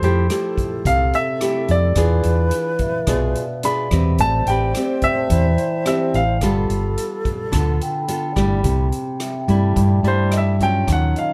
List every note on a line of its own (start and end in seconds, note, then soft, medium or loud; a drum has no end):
0.00 0.28 F2 medium
0.00 0.83 F3 medium
0.00 0.26 A3 medium
0.00 0.26 E4 medium
0.00 1.33 G4 soft
0.00 0.26 G4 medium
0.00 1.97 A4 loud
0.00 0.89 C5 medium
0.00 closed hi-hat soft
0.29 1.04 A3 medium
0.29 1.04 E4 medium
0.29 1.05 G4 medium
0.29 cross-stick medium
0.29 closed hi-hat soft
0.58 kick medium
0.58 closed hi-hat soft
0.85 1.11 C2 medium
0.85 1.94 C3 medium
0.85 1.15 F5 loud
0.85 kick medium
0.85 closed hi-hat soft
1.13 1.71 E5 loud
1.13 closed hi-hat soft
1.41 1.92 A3 soft
1.41 1.92 E4 soft
1.41 1.93 G4 medium
1.41 cross-stick medium
1.41 closed hi-hat soft
1.68 1.95 F2 medium
1.68 3.33 D5 medium
1.68 closed hi-hat soft
1.95 2.22 E2 medium
1.95 3.05 E3 medium
1.95 2.71 D4 medium
1.95 2.71 F4 medium
1.95 2.72 G#4 medium
1.95 3.92 B4 loud
1.95 3.55 F5 soft
1.95 kick medium
1.95 cross-stick medium
1.95 closed hi-hat soft
2.23 2.50 E2 medium
2.23 closed hi-hat soft
2.51 closed hi-hat soft
2.79 4.39 E5 soft
2.79 kick medium
2.79 closed hi-hat soft
3.07 3.33 B1 medium
3.07 4.16 B2 medium
3.07 3.43 D4 medium
3.07 3.44 F4 medium
3.07 3.44 G#4 medium
3.07 kick medium
3.07 cross-stick medium
3.07 closed hi-hat soft
3.35 closed hi-hat soft
3.63 3.87 D4 medium
3.63 3.87 F4 medium
3.63 3.87 G#4 medium
3.63 4.21 B5 medium
3.63 closed hi-hat soft
3.91 4.17 E2 medium
3.91 4.43 C4 medium
3.91 4.43 G4 medium
3.91 4.43 B4 medium
3.91 kick medium
3.91 cross-stick medium
3.91 closed hi-hat soft
4.18 4.45 A1 loud
4.18 5.28 A3 medium
4.18 6.37 C5 loud
4.18 4.75 D5 soft
4.18 4.48 A5 loud
4.18 kick medium
4.18 closed hi-hat soft
4.46 4.72 A1 medium
4.46 4.71 C4 medium
4.46 4.71 G4 medium
4.46 4.72 B4 medium
4.46 5.05 G5 medium
4.46 closed hi-hat soft
4.74 5.50 C4 medium
4.74 5.51 G4 medium
4.74 6.34 D5 soft
4.74 cross-stick medium
4.74 closed hi-hat soft
4.95 6.51 G5 soft
5.02 5.86 E5 loud
5.02 kick medium
5.02 closed hi-hat soft
5.14 6.67 A5 soft
5.30 5.56 E2 medium
5.30 6.39 E3 medium
5.30 kick medium
5.30 closed hi-hat soft
5.58 closed hi-hat soft
5.85 6.22 C4 medium
5.85 6.22 G4 medium
5.85 6.15 E5 medium
5.85 cross-stick medium
5.85 closed hi-hat soft
6.14 6.40 A1 medium
6.14 8.33 F5 medium
6.14 closed hi-hat soft
6.41 6.67 G1 loud
6.41 7.51 G3 medium
6.41 7.49 B3 medium
6.41 7.49 F4 medium
6.41 8.33 A4 loud
6.41 7.49 A4 medium
6.41 kick medium
6.41 cross-stick medium
6.41 closed hi-hat soft
6.70 6.95 G1 medium
6.70 closed hi-hat soft
6.97 closed hi-hat soft
7.25 kick medium
7.25 closed hi-hat soft
7.52 7.79 D2 medium
7.52 8.61 D3 medium
7.52 8.04 B3 medium
7.52 8.04 F4 medium
7.52 8.04 A4 medium
7.52 kick medium
7.52 cross-stick medium
7.52 closed hi-hat soft
7.81 8.89 G5 medium
7.81 closed hi-hat soft
8.00 9.05 B5 soft
8.08 8.32 B3 medium
8.08 8.32 F4 medium
8.08 8.32 A4 medium
8.08 closed hi-hat soft
8.36 8.62 G1 medium
8.36 8.88 G3 medium
8.36 8.88 A3 medium
8.36 8.88 E4 medium
8.36 kick medium
8.36 cross-stick medium
8.36 closed hi-hat soft
8.64 8.90 C2 medium
8.64 9.73 C3 soft
8.64 kick medium
8.64 closed hi-hat soft
8.92 closed hi-hat soft
9.20 10.79 E5 soft
9.20 cross-stick medium
9.20 closed hi-hat soft
9.40 10.96 G5 soft
9.48 9.74 G2 loud
9.48 9.99 G3 medium
9.48 10.00 A3 medium
9.48 10.00 E4 medium
9.48 kick soft
9.48 closed hi-hat soft
9.59 11.12 A5 soft
9.76 10.02 G2 medium
9.76 10.85 G2 medium
9.76 kick medium
9.76 closed hi-hat soft
10.03 10.83 G2 medium
10.03 10.55 G3 medium
10.03 10.55 A3 medium
10.03 10.55 E4 medium
10.03 closed hi-hat soft
10.08 10.33 C5 medium
10.31 10.35 D#5 medium
10.31 cross-stick medium
10.31 closed hi-hat soft
10.37 10.62 E5 medium
10.60 11.33 F#3 medium
10.60 11.33 C#4 medium
10.60 11.33 F4 medium
10.60 10.88 G5 medium
10.60 kick soft
10.60 closed hi-hat soft
10.87 11.13 D#2 medium
10.87 11.33 D#3 medium
10.87 kick medium
10.87 cross-stick medium
10.87 closed hi-hat soft
10.92 11.17 F#5 medium
11.16 11.33 D#5 soft
11.16 11.33 F5 medium
11.16 closed hi-hat soft